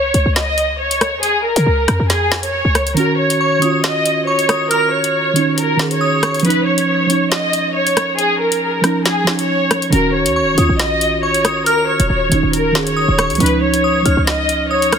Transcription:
Already playing: C#2 C#5
0.14 C#2, closed hi-hat
0.26 C#2
0.36 D#5, snare, closed hi-hat
0.58 closed hi-hat
0.79 C#5
0.91 closed hi-hat
1.01 cross-stick, closed hi-hat
1.13 F2
1.22 G#4, closed hi-hat
1.34 C#2
1.44 A#4
1.56 C#3, closed hi-hat
1.66 C#2
1.88 F2, cross-stick, closed hi-hat
2.00 F2
2.09 G#4, snare, closed hi-hat
2.32 snare
2.43 C#5, closed hi-hat
2.65 C#2
2.75 cross-stick, closed hi-hat
2.87 closed hi-hat
2.94 D#3 C#4 A#4, closed hi-hat
3.00 F#4
3.19 C#5
3.30 closed hi-hat
3.41 C#6
3.59 D#3 C#4 D#6, closed hi-hat
3.64 F4
3.84 D#5, snare, closed hi-hat
4.06 closed hi-hat
4.27 C#5 C#6
4.39 closed hi-hat
4.49 D#6, cross-stick, closed hi-hat
4.70 A#4 F6, closed hi-hat
4.92 C#5
5.04 closed hi-hat
5.33 D#3 C#4, closed hi-hat
5.39 D#4
5.58 A#4, closed hi-hat
5.77 D#3 C#4, snare
5.82 G#4
5.91 C#5, closed hi-hat
6.01 D#6
6.23 C#6, cross-stick, closed hi-hat
6.34 closed hi-hat
6.40 F3, closed hi-hat
6.45 C#4 D#4 B4, closed hi-hat
6.50 closed hi-hat
6.66 C#5
6.78 closed hi-hat
7.07 F3 C#4, closed hi-hat
7.12 D#4
7.32 D#5, snare, closed hi-hat
7.53 closed hi-hat
7.75 C#5
7.87 closed hi-hat
7.97 cross-stick, closed hi-hat
8.18 G#4, closed hi-hat
8.40 A#4
8.52 closed hi-hat
8.81 F3 C#4, cross-stick, closed hi-hat
8.87 D#4
9.05 G#4, snare, closed hi-hat
9.24 F3 C#4, snare
9.30 D#4
9.39 C#5, closed hi-hat
9.71 cross-stick, closed hi-hat
9.82 closed hi-hat
9.90 D#1 D#3 C#4 A#4, closed hi-hat
9.95 F#4
10.14 C#5
10.26 D#2, closed hi-hat
10.36 C#6
10.42 D#1
10.55 D#2 D#3 C#4 D#6, closed hi-hat
10.60 F4
10.69 A#1
10.79 D#5, snare, closed hi-hat
11.01 closed hi-hat
11.23 C#5 C#6
11.34 closed hi-hat
11.45 D#6, cross-stick, closed hi-hat
11.66 D#2 A#4 F6, closed hi-hat
11.83 A#1
11.88 C#5
12.00 D#1, closed hi-hat
12.10 D#1
12.29 D#1 D#3 C#4, closed hi-hat
12.34 D#4
12.43 D#1
12.53 A#4, closed hi-hat
12.72 D#3 C#4, snare
12.78 G#4
12.87 C#5, closed hi-hat
12.97 D#6
13.08 D#1
13.18 C#6, cross-stick, closed hi-hat
13.30 D#2, closed hi-hat
13.35 F3, closed hi-hat
13.40 C#2 C#4 D#4 B4, closed hi-hat
13.46 closed hi-hat
13.61 C#5
13.74 closed hi-hat
13.84 D#6
14.02 C#2 F3 C#4 F6, closed hi-hat
14.08 D#4
14.17 C#2
14.27 D#5, snare, closed hi-hat
14.49 closed hi-hat
14.70 C#5 D#6
14.82 closed hi-hat
14.92 F6, cross-stick, closed hi-hat

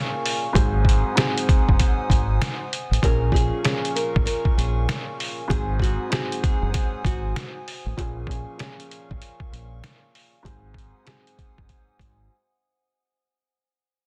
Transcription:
Already playing: A#2 F3 C#4 G#4 A#4 F5 G#5 C#6
0.26 open hi-hat
0.53 G#1 G#2 F#3 C4 G#4 C5 F#5 G#5 D#6, kick, closed hi-hat
0.85 kick
0.89 closed hi-hat
1.15 G#2 F#3 C4 G#4, snare, closed hi-hat
1.38 closed hi-hat
1.49 kick, closed hi-hat
1.69 F#1, kick
1.79 kick, closed hi-hat
2.10 G#1, kick, closed hi-hat
2.42 snare, closed hi-hat
2.73 closed hi-hat
2.91 A1, closed hi-hat
3.02 A#1 A#2 F3 C#4 G#4 A#4 F5 G#5 C#6, kick, closed hi-hat
3.32 A#2 F3 C#4 G#4, kick
3.36 closed hi-hat
3.63 A#2 F3 C#4 G#4, snare, closed hi-hat
3.85 closed hi-hat
3.96 A#4, closed hi-hat
4.16 G#1, kick
4.26 A#4, closed hi-hat
4.45 kick
4.58 A#1 G#4, closed hi-hat
4.89 snare, closed hi-hat
5.20 open hi-hat
5.48 G#1 G#2 F#3 C4 G#4 C5 F#5 D#6, kick, closed hi-hat
5.79 F#4, kick
5.84 closed hi-hat
6.10 G#2 F#3 C4 F#4 G#4, snare, closed hi-hat
6.32 closed hi-hat
6.43 G#4, kick, closed hi-hat
6.62 F#1
6.74 G#4, kick, closed hi-hat
7.05 G#1 F#4, kick, closed hi-hat
7.36 snare, closed hi-hat
7.68 open hi-hat
7.86 A1
7.97 A#1 A#2 F3 C#4 G#4 A#4 F5 C#6, kick, closed hi-hat
8.26 A#2 F3 C#4 G#4, kick
8.31 closed hi-hat
8.58 A#2 F3 C#4 G#4, snare, closed hi-hat
8.80 closed hi-hat
8.91 closed hi-hat
9.11 G#1, kick
9.22 closed hi-hat
9.40 kick
9.52 A#1, closed hi-hat
9.84 snare, closed hi-hat
10.15 open hi-hat
10.43 G#1 G#2 F#3 C4 G#4 C5 F#5 G#5 D#6, kick, closed hi-hat
10.74 kick
10.78 closed hi-hat
11.05 G#2 F#3 C4 G#4, snare, closed hi-hat
11.27 closed hi-hat
11.39 kick, closed hi-hat
11.58 F#1, kick
11.69 kick, closed hi-hat
11.99 G#1, kick, closed hi-hat

